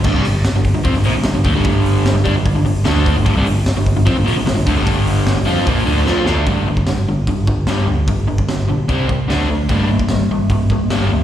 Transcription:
<<
  \new Staff \with { instrumentName = "Overdriven electric guitar" } { \clef bass \time 4/4 \key g \minor \tempo 4 = 149 <g, d>16 <c g>16 <g, d>8 r16 <g, d>8 <g, d>16 <f c'>16 <g, d>16 <bes, f>16 <g, d>16 <g, d>16 <g, d>16 <d a>16 <g, d g>16~ | <g, d g>4~ <g, d g>16 <g, d>16 <g d'>16 <g, d>16 <g, d>16 <g, d>16 <g, d>8 <d a d'>8. <g, d>16 | <g, d>16 <c g>16 <g, d>8 r16 <g, d>8 <g, d>16 <f c'>16 <g, d>16 <bes, f>16 <g, d>16 <g, d>16 <g, d>16 <d a>16 <g, d g>16~ | <g, d g>4~ <g, d g>16 <g, d>16 <f c' f'>8 <bes, f bes>8 <d a d'>8 <f c' f'>8 <d a d'>8 |
<g, d g>8 <g, d>8 <g, d>8 <g, d>8 <g, d>8 <g, d>8 <g, d g>8 <g, d>8 | <g, d>8 <g, d>8 <g, d>8 <g, d>8 <c g c'>8 <c g>8 <d a d'>8 <d a>8 | <g bes d'>8 <g bes>8 <g bes>8 <g bes>8 <g bes>8 <g bes>8 <g bes d'>8 <g bes>8 | }
  \new Staff \with { instrumentName = "Picked electric bass" } { \clef bass \time 4/4 \key g \minor g,,16 c,16 g,,8 r16 g,,8 g,,16 f,16 g,,16 bes,,16 g,,16 g,,16 g,,16 d,16 g,,16~ | g,,4~ g,,16 g,,16 g,16 g,,16 g,,16 g,,16 g,,8 d,8. g,,16 | g,,16 c,16 g,,8 r16 g,,8 g,,16 f,16 g,,16 bes,,16 g,,16 g,,16 g,,16 d,16 g,,16~ | g,,4~ g,,16 g,,16 f,8 bes,,8 d,8 f,8 d,8 |
r8 g,,8 g,,8 g,,8 g,8 g,,8 g,,8 d,8 | g,,8 g,,8 g,,8 bes,,8 c,8 c,8 d,4 | g,,8 g,,8 g,,8 g,,8 g,8 g,,8 g,,8 d,8 | }
  \new DrumStaff \with { instrumentName = "Drums" } \drummode { \time 4/4 <cymc bd>8 hho8 <hho sn>8 <hho bd>8 <hho bd>16 sn16 hho8 <hho sn>8 <hho bd>8 | <hho bd>8 hho8 <hho sn>8 <hho bd>8 <hho bd>8 hho8 <hho sn>8 <hho bd>8 | <hho bd>8 hho8 <hho sn>8 <hho bd>8 <hho bd>8 hho8 <hho sn>8 <hho bd>8 | <hho bd>8 hho8 <hho sn>8 hho8 <hho bd>8 hho8 sn8 sn8 |
<hho bd>8. bd16 <hho sn>4 <hho bd>8 bd8 <hho sn>4 | <hho bd>8. bd16 <hho sn>4 <hho bd>8 bd8 <hho sn>4 | <hho bd>8. bd16 <hho sn>4 <hho bd>8 bd8 <hho sn>4 | }
>>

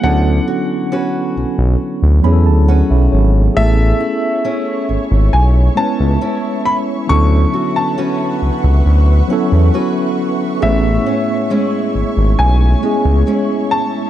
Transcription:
<<
  \new Staff \with { instrumentName = "Grand piano" } { \time 4/4 \key a \major \tempo 4 = 68 fis''4. r2 r8 | e''4. r8 gis''8 a''4 b''8 | cis'''8. a''4 r2 r16 | e''2 gis''4. a''8 | }
  \new Staff \with { instrumentName = "Ambient pad" } { \time 4/4 \key a \major << { r1 | <e'' cis'''>1~ | <e'' cis'''>1~ | <e'' cis'''>1 | } \\ { r1 | cis''1 | <b' fis''>1 | cis''1 | } >> }
  \new Staff \with { instrumentName = "Steel-string acoustic guitar" } { \time 4/4 \key a \major d8 fis'8 <cis' fis' b'>4. cis'8 <cis' fis' b'>4 | a8 e'8 <cis' e'>4. cis'8 <cis' e'>4 | d8 fis'8 <cis' fis' b'>4. cis'8 <cis' fis' b'>4 | a,8 cis'8 <gis cis' e'>4. gis8 <gis cis' e'>4 | }
  \new Staff \with { instrumentName = "Tine electric piano" } { \time 4/4 \key a \major << { r2 r8 b''16 a''16 fis''16 e''16 cis''8 | r1 | r1 | r1 | } \\ { <fis b cis' e' a'>4.~ <fis b cis' e' a'>16 r8. <fis b cis' e' gis' a'>4. | <b cis' e' gis' a'>4.~ <b cis' e' gis' a'>16 r8. <gis b cis' e' b'>4. | <f fis b cis' e' a'>4.~ <f fis b cis' e' a'>16 r8. <fis b cis' e' a'>4. | <a b cis' e' gis'>4.~ <a b cis' e' gis'>16 r8. <gis b cis' e' gis'>4. | } >> }
  \new Staff \with { instrumentName = "Analog synth bass" } { \clef bass \time 4/4 \key a \major d,8 r4 b,,16 b,,16 r16 d,16 e,16 d,8 b,,16 gis,,8 | a,,8 r4 gis,,16 gis,,16 b,,8 r16 cis,16 r4 | d,8 r4 cis,16 cis,16 d,8 r16 e,16 r4 | a,,8 r4 gis,,16 gis,,16 b,,8 r16 cis,16 r4 | }
>>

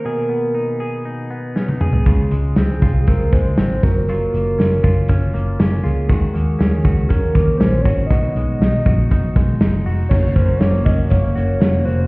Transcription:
<<
  \new Staff \with { instrumentName = "Soft synth lead" } { \time 4/4 \key ges \lydian \tempo 4 = 119 bes'2 r4. aes'8~ | aes'2 bes'8 c''4 bes'8 | bes'2 r4. aes'8~ | aes'2 bes'4 c''8 des''8 |
ees''2. r4 | des''8 c''8 des''8 ees''8 des''4. c''8 | }
  \new Staff \with { instrumentName = "Clean electric guitar" } { \time 4/4 \key ges \lydian <ces aes'>8 ces'8 ees'8 aes'8 ees'8 ces'8 des'16 ees'16 aes'8 | <des f'>8 aes8 c'8 f'8 c'8 aes8 c'8 ges8 | <ges f'>8 bes8 des'8 f'8 des'8 bes8 des'8 f'8 | <ees ges'>8 bes8 des'8 ges'8 des'8 bes8 des'8 ges'8 |
<ces ges'>8 aes8 ees'8 ges'8 ees'8 aes8 ees'8 ges'8 | ges8 des'8 bes8 des'8 bes8 ges'8 bes8 ges'8 | }
  \new Staff \with { instrumentName = "Twelve-string acoustic guitar" } { \time 4/4 \key ges \lydian r1 | r1 | r1 | r1 |
r1 | <ges bes des' ges'>8 <bes des' ges'>8 <ges bes des' ges'>8 <bes des' ges'>8 <ges bes des' ges'>8 <bes des' ges'>8 <ges bes des' ges'>8 <bes des' ges'>8 | }
  \new Staff \with { instrumentName = "Picked electric bass" } { \clef bass \time 4/4 \key ges \lydian r1 | des,8 des,8 des,8 c,8 des,8 des,8 aes,,8 ges,,8~ | ges,,8 ges,,8 ges,,8 ges,,8 ges,,8 ges,,8 ges,,8 des,8 | ees,8 ees,8 ees,8 des,8 ees,8 ees,8 bes,,8 aes,,8 |
ces,8 ces,8 ces,8 bes,,8 ces,8 ces,8 ges,,8 f,,8 | ges,,8 ges,,8 ges,,8 f,,8 ges,,8 ges,,8 f,,8 f,,8 | }
  \new DrumStaff \with { instrumentName = "Drums" } \drummode { \time 4/4 r4 r4 r4 sn16 tommh16 toml16 tomfh16 | <hh bd>8 hh8 <hh sn>8 <hh bd>8 <hh bd>8 <hh bd>8 <hh sn>8 <hh bd>8 | hh8 hh8 <hh sn>8 <hh bd>8 <hh bd>8 hh8 <hh sn>8 hh8 | <hh bd>8 hh8 <hh sn>8 <hh bd>8 <hh bd>8 <hh bd>8 <hh sn>8 <hh bd>8 |
<hh bd>8 hh8 <hh sn>8 <hh bd>8 <hh bd>8 <hh bd>8 <hh sn>8 hho8 | <cymc bd>8 <hh bd>8 <hh sn>8 <hh bd>8 <hh bd>8 hh8 <hh sn>8 hh8 | }
>>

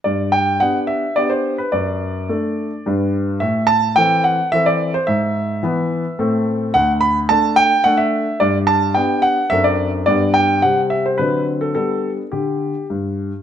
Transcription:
<<
  \new Staff \with { instrumentName = "Grand piano" } { \time 3/4 \key g \major \tempo 4 = 108 d''8 g''8 fis''8 e''8 d''16 c''8 b'16 | d''2~ d''8 r8 | e''8 a''8 g''8 fis''8 e''16 d''8 c''16 | e''2~ e''8 r8 |
fis''8 b''8 a''8 g''8 fis''16 e''8. | d''8 a''8 g''8 fis''8 e''16 d''8. | d''8 g''8 fis''8 e''16 c''16 b'8. a'16 | a'4 g'4 r4 | }
  \new Staff \with { instrumentName = "Grand piano" } { \time 3/4 \key g \major g,4 <b d' g'>4 <b d' g'>4 | fis,4 <a d' a'>4 <g, g d' b'>4 | a,4 <e c' a'>4 <e c' a'>4 | gis,4 <e b b'>4 <a, a c' a'>4 |
d,4 <a d' a'>4 <a d' a'>4 | g,4 <b d' g'>4 <fis, c' d' a'>4 | <g, b d' g'>4 <c g c' g'>4 <d fis c' d'>4 | <g b d'>4 d4 g,4 | }
>>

